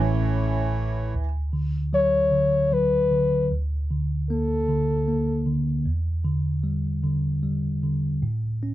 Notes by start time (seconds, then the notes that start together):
Already playing: A1 A2 E3 A3 C#4 E4 C#5 E5
1.15 D2
1.53 D3
1.93 F#3 C#5
2.31 D3
2.72 F#3 B4
3.11 D3
3.52 D2
3.91 D3
4.30 A#3 A4
4.68 D3
5.08 A#3
5.46 D3
5.85 E2
6.25 D3
6.64 G3
7.04 D3
7.43 G3
7.83 D3
8.22 A2
8.63 C#4